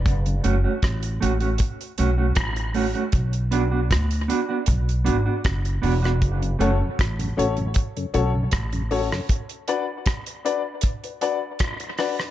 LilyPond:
<<
  \new Staff \with { instrumentName = "Upright piano" } { \time 4/4 \key fis \minor \tempo 4 = 78 r1 | r1 | r8 <cis' fis' a' cis''>16 r8. <cis' fis' a' cis''>16 r8 <a' cis''>16 <cis' fis' a' cis''>16 r8. <cis' fis' a' cis''>16 <a' cis''>16 | r8 <d' fis' b' d''>16 r8. <d' fis' b' d''>16 r8 <b' d''>16 <d' fis' b' d''>16 r8. <d' fis' b' d''>16 <b' d''>16 | }
  \new Staff \with { instrumentName = "Clean electric guitar" } { \time 4/4 \key fis \minor r8 <a cis' fis'>16 <a cis' fis'>16 r8 <a cis' fis'>16 <a cis' fis'>16 r8 <a cis' fis'>16 <a cis' fis'>16 r8 <a cis' fis'>16 <a cis' fis'>16 | r8 <b d' fis'>16 <b d' fis'>16 r8 <b d' fis'>16 <b d' fis'>16 r8 <b d' fis'>16 <b d' fis'>16 r8 <b d' fis'>16 <b d' fis'>16 | r8 <a cis' fis'>16 r2. r16 | r1 | }
  \new Staff \with { instrumentName = "Tonewheel organ" } { \time 4/4 \key fis \minor r1 | r1 | r8 <a cis' fis'>8 r8 <a cis' fis'>8 r8 <a cis' fis'>8 r8 <a cis' fis'>8 | r1 | }
  \new Staff \with { instrumentName = "Tonewheel organ" } { \clef bass \time 4/4 \key fis \minor r16 <fis, cis>16 r2. r8 | r1 | r16 <fis, cis>16 r16 <fis, cis>16 r16 <fis, cis>16 r16 <fis, cis>16 r16 <fis, cis>16 r16 <fis, cis>16 r16 <fis, cis>16 r16 <fis, cis>16 | r1 | }
  \new Staff \with { instrumentName = "Upright bass" } { \clef bass \time 4/4 \key fis \minor fis,,8 fis,,16 r16 a,,8 a,,8 r8 b,,8 a,,8. r16 | b,,4 d,8 r8 b,,8 gis,,16 r16 fis,,8 e,,8 | fis,,8 fis,,16 r16 a,,8 a,,8 r8 b,,8 a,,8. r16 | r1 | }
  \new DrumStaff \with { instrumentName = "Drums" } \drummode { \time 4/4 <hh bd>16 hh16 hh8 <hh bd ss>16 hh16 hh16 hh16 <hh bd>16 hh16 hh8 <hh bd ss>16 hh16 hho16 hh16 | <hh bd>16 hh16 hh8 <hh bd ss>16 hh16 hh8 <hh bd>16 hh16 hh8 <hh bd ss>16 hh16 hho16 <hh ss>16 | <hh bd>16 hh16 hh8 <hh bd ss>16 hh16 hh16 hh16 <hh bd>16 hh16 hh8 <hh bd ss>16 hh16 hho16 ss16 | <hh bd>16 hh16 hh8 <hh bd ss>16 hh16 hh8 <hh bd>16 hh16 hh8 <hh bd ss>16 hh16 <hho ss>16 ss16 | }
>>